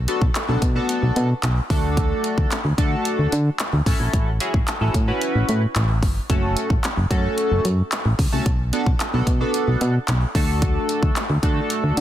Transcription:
0.08 B3 D4 F#4 A4, closed hi-hat
0.22 B1, kick
0.35 F#4 A4, clap, closed hi-hat
0.48 B1 B3 D4 F#4 A4
0.62 B2, kick, closed hi-hat
0.75 B3 D4 F#4 A4
0.89 closed hi-hat
1.03 B1
1.16 B2, closed hi-hat
1.43 B1, clap, closed hi-hat
1.70 D2 A3 D4 F#4 A4, kick, open hi-hat
1.97 kick, closed hi-hat
2.24 closed hi-hat
2.38 D2, kick
2.51 clap, closed hi-hat
2.65 D2
2.78 D3 A3 D4 F#4 A4, kick, closed hi-hat
3.05 closed hi-hat
3.19 D2
3.32 D3, closed hi-hat
3.59 clap, closed hi-hat
3.73 D2
3.86 A1 C#4 E4 F#4 A4, kick, open hi-hat
4.00 A#1
4.13 A1, kick, closed hi-hat
4.40 C#4 E4 F#4 G#4, closed hi-hat
4.54 A1, kick
4.67 F#4 A4, clap, closed hi-hat
4.81 A1 C#4 E4 F#4 A4
4.94 A2, kick, closed hi-hat
5.08 C#4 E4 F#4 B4
5.21 closed hi-hat
5.35 A1
5.49 A2, closed hi-hat
5.76 A1, clap, closed hi-hat
6.03 G1, kick, open hi-hat
6.29 F#1 A3 C#4 F#4 A4, kick, closed hi-hat
6.57 closed hi-hat
6.70 A1, kick
6.84 clap, closed hi-hat
6.97 F#1
7.11 F#2 A3 C#4 F#4 A4, kick, closed hi-hat
7.38 closed hi-hat
7.51 F#1
7.65 F#2, closed hi-hat
7.92 clap, closed hi-hat
8.05 A1
8.19 C#2, kick, open hi-hat
8.32 C2 A3 C#4 F#4 A4
8.46 B1, kick, closed hi-hat
8.73 B3 D4 F#4 A4, closed hi-hat
8.86 B1, kick
9.00 F#4 A4, clap, closed hi-hat
9.13 B1 B3 D4 F#4 A4
9.27 B2, kick, closed hi-hat
9.40 B3 D4 F#4 A4
9.54 closed hi-hat
9.68 B1
9.81 B2, closed hi-hat
10.08 B1, clap, closed hi-hat
10.35 D2 A3 D4 F#4 A4, kick, open hi-hat
10.62 kick, closed hi-hat
10.89 closed hi-hat
11.03 D2, kick
11.16 clap, closed hi-hat
11.30 D2
11.43 D3 A3 D4 F#4 A4, kick, closed hi-hat
11.70 closed hi-hat
11.84 D2
11.97 D3, closed hi-hat

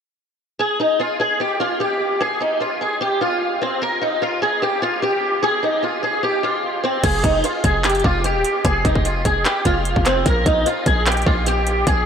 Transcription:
0.59 G#4
0.80 D#4
1.00 F4
1.20 G#4
1.40 G4
1.60 F4
1.80 G4
2.20 G#4
2.40 D#4
2.60 F4
2.81 G#4
3.01 G4
3.21 F4
3.61 C4
3.82 A#4
4.01 D#4
4.22 F4
4.42 G#4
4.62 G4
4.82 F4
5.02 G4
5.43 G#4
5.63 D#4
5.83 F4
6.03 G#4
6.23 G4
6.43 F4
6.84 C4
7.04 F1 G#4, kick, closed hi-hat, crash
7.24 F1 D#4, kick, closed hi-hat
7.44 F4, closed hi-hat
7.64 F1 G#4, kick, closed hi-hat
7.84 G4, clap, closed hi-hat
7.89 closed hi-hat
7.95 closed hi-hat
8.00 closed hi-hat
8.04 F1 F4, kick
8.24 G4, closed hi-hat
8.35 D#1
8.44 closed hi-hat
8.65 F1 G#4, kick, closed hi-hat
8.85 F1 D#4, kick, closed hi-hat
8.95 kick
9.05 F4, closed hi-hat
9.25 F1 G#4, kick, closed hi-hat
9.45 G4, clap, closed hi-hat
9.65 F1 F4, kick, closed hi-hat
9.85 closed hi-hat
9.96 F1, kick
10.06 C4, clap, closed hi-hat
10.26 A#1 A#4, kick, closed hi-hat
10.46 A#1 D#4, kick, closed hi-hat
10.66 F4, closed hi-hat
10.86 A#1 G#4, kick, closed hi-hat
11.06 G4, clap, closed hi-hat
11.12 closed hi-hat
11.17 closed hi-hat
11.22 closed hi-hat
11.26 A#1 F4, kick
11.46 G4, closed hi-hat
11.67 closed hi-hat
11.87 A#1 G#4, kick, closed hi-hat

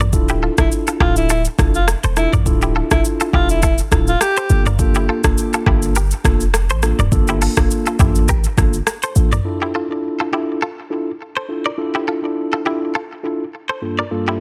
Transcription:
Already playing: A1
0.00 A#4 D5, mid tom, shaker
0.13 D1 D4 E4 F4 A4, kick, shaker
0.29 E4 G4, shaker
0.43 F4 A4
0.58 E1 D4 E4 F4 A4, kick, cross-stick, shaker
0.72 shaker
0.87 F4 A4, shaker
1.00 D1 D4 E4 F4 G4 A4, kick, cross-stick
1.16 E4, shaker
1.29 E4 F4 A4, shaker
1.45 shaker
1.58 F1 D4 E4 F4 A4, kick, cross-stick, shaker
1.74 F4, shaker
1.88 cross-stick, shaker
2.04 E1 A4 C5, shaker
2.16 D4 E4 F4 A4, cross-stick, shaker
2.33 A1 A#4 D5, mid tom, shaker
2.46 D1 D4 E4 F4 A4, kick, shaker
2.62 E4 G4, shaker
2.76 F4 A4
2.91 F1 D4 E4 F4 A4, kick, cross-stick, shaker
3.05 shaker
3.20 F4 A4, shaker
3.33 E1 D4 E4 F4 G4 A4, kick
3.49 E4, shaker
3.62 E4 F4 A4, kick, shaker
3.78 shaker
3.91 D1 D4 E4 F4 A4, kick, cross-stick, shaker
4.07 F4, shaker
4.21 G4, cross-stick, shaker
4.37 A4 C5, shaker
4.50 G1 A#3 D4 F4 A4, shaker
4.66 A#4 D5, mid tom, shaker
4.79 A#3 D4 F4 A4, kick, shaker
4.95 E4 G4, shaker
5.09 F4 A4
5.24 F1 A#3 D4 F4 A4, kick, cross-stick, shaker
5.38 shaker
5.53 F4 A4, shaker
5.66 G1 A#3 D4 E4 F4 G4 A4, kick, cross-stick
5.82 shaker
5.95 G4 A#4, shaker
6.11 shaker
6.24 F1 A#3 D4 F4 A4, kick, cross-stick, shaker
6.40 shaker
6.54 cross-stick, shaker
6.70 A1 A4 C5, shaker
6.82 A#3 D4 F4 A4, cross-stick, shaker
6.99 D1 A#4 D5, mid tom, shaker
7.11 G1 A#3 D4 F4 A4, kick, shaker
7.28 E4 G4, shaker
7.42 F4 A4, open hi-hat, shaker
7.57 F1 A#3 D4 F4 A4, kick, cross-stick, shaker
7.71 shaker
7.86 F4 A4, shaker
7.99 A1 A#3 D4 E4 F4 G4 A4, kick, mid tom, shaker
8.15 shaker
8.28 G4 A#4, kick, shaker
8.44 shaker
8.57 G1 A#3 D4 F4 A4, kick, cross-stick, shaker
8.73 shaker
8.87 cross-stick, shaker
9.03 A4 C5, shaker
9.16 A1 A#3 D4 F4 A4, shaker
9.32 A#4 D5, mid tom, shaker
9.45 D4 E4 F4 A4
9.62 E4 G4
9.75 F4 A4
9.90 D4 E4 F4 A4
10.20 F4 A4
10.32 D4 E4 F4 G4 A4
10.62 F4 A4
10.90 D4 E4 F4 A4
11.37 A4 C5
11.49 D4 E4 F4 A4
11.66 A#4 D5
11.78 D4 E4 F4 A4
11.95 E4 G4
12.08 F4 A4
12.23 D4 E4 F4 A4
12.53 F4 A4
12.65 D4 E4 F4 G4 A4
12.95 F4 A4
13.23 D4 E4 F4 A4
13.69 A4 C5
13.82 G2 A#3 D4 F4 A4
13.99 A#4 D5
14.11 G2 A#3 D4 F4 A4
14.28 E4 G4

